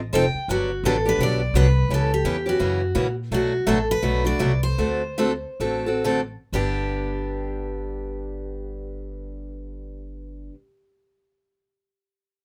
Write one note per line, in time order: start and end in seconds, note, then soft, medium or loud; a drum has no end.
0.00 0.12 A1 medium
0.13 0.33 F1 medium
0.13 0.24 F3 medium
0.13 0.24 C4 medium
0.13 0.24 D#4 medium
0.13 0.24 A4 medium
0.13 0.50 G5 loud
0.34 muted upright bass stroke soft
0.48 0.83 G1 medium
0.48 0.69 D3 medium
0.48 0.69 F#3 medium
0.48 0.70 B3 medium
0.48 0.70 D4 medium
0.48 0.86 F#4 medium
0.48 0.70 G4 medium
0.84 1.18 A1 medium
0.84 0.95 D3 loud
0.84 0.95 F#3 loud
0.84 0.96 B3 loud
0.84 0.95 D4 medium
0.84 0.96 G4 loud
0.84 1.05 A4 medium
1.05 1.20 B3 soft
1.05 1.19 D4 medium
1.05 1.19 G4 medium
1.05 1.21 B4 loud
1.19 1.53 B1 medium
1.19 1.40 D3 medium
1.19 1.40 F#3 medium
1.19 1.40 B3 medium
1.19 1.40 D4 medium
1.19 1.40 G4 medium
1.23 1.56 D5 medium
1.54 1.88 C2 medium
1.54 1.66 D3 medium
1.54 1.66 F#3 loud
1.54 1.66 B3 loud
1.54 1.66 D4 medium
1.54 1.66 G4 medium
1.54 1.92 B4 medium
1.89 2.23 C#2 medium
1.89 2.10 C#3 medium
1.89 2.10 E3 medium
1.89 2.11 B3 medium
1.89 2.11 C#4 medium
1.89 2.11 G4 medium
1.94 2.13 A4 medium
2.14 2.45 G4 medium
2.24 2.59 E2 medium
2.24 2.36 C#3 medium
2.24 2.36 E3 medium
2.24 2.36 B3 medium
2.24 2.36 C#4 medium
2.24 2.36 G4 loud
2.46 2.59 B3 soft
2.46 2.59 C#4 soft
2.46 3.14 F#4 medium
2.46 2.59 G4 soft
2.59 2.94 F#2 medium
2.59 2.80 C#3 medium
2.59 2.80 E3 medium
2.59 2.80 A#3 medium
2.59 2.80 C#4 medium
2.59 2.81 F#4 medium
2.95 3.30 A#2 medium
2.95 3.06 C#3 medium
2.95 3.06 E3 medium
2.95 3.06 A#3 medium
2.95 3.06 C#4 medium
2.95 3.06 F#4 medium
3.31 3.59 B1 medium
3.31 3.52 B2 medium
3.31 3.52 F#3 medium
3.31 3.52 A3 medium
3.31 3.52 D4 medium
3.31 3.52 F#4 medium
3.31 3.68 F#4 medium
3.67 3.97 A1 medium
3.67 3.78 B2 loud
3.67 3.77 F#3 medium
3.67 3.77 A3 loud
3.67 3.78 D4 medium
3.67 3.78 F#4 medium
3.67 3.88 A4 medium
3.91 4.24 B4 loud
4.02 4.34 B1 medium
4.02 4.24 B2 medium
4.02 4.24 F#3 medium
4.02 4.24 A3 medium
4.02 4.24 D4 medium
4.02 4.23 F#4 medium
4.24 4.38 A3 soft
4.24 4.39 D4 soft
4.24 4.39 F#4 soft
4.24 4.63 D5 medium
4.39 4.72 C2 medium
4.39 4.51 B2 medium
4.39 4.51 F#3 medium
4.39 4.51 A3 loud
4.39 4.51 D4 medium
4.39 4.51 F#4 medium
4.63 6.02 C5 medium
4.78 5.44 D2 medium
4.78 5.01 D3 medium
4.78 5.01 A3 medium
4.78 5.01 C4 medium
4.78 5.02 F#4 medium
4.78 5.02 A4 medium
5.18 5.31 D3 medium
5.18 5.31 A3 medium
5.18 5.31 C4 medium
5.18 5.31 F#4 medium
5.18 5.31 A4 loud
5.60 6.35 A1 medium
5.60 5.86 D3 medium
5.60 5.86 A3 medium
5.60 5.86 C4 medium
5.60 5.86 F#4 medium
5.60 5.85 A4 medium
5.86 6.04 C4 soft
5.86 6.04 F#4 soft
5.86 6.04 A4 medium
6.04 6.19 D3 medium
6.04 6.20 A3 medium
6.04 6.20 C4 medium
6.04 6.20 F#4 medium
6.04 6.20 A4 loud
6.52 10.48 G1 medium
6.52 10.53 G2 medium
6.52 10.54 D3 medium
6.52 10.55 B3 medium
6.52 10.55 D4 medium
6.52 10.49 G4 medium
6.52 10.55 G4 medium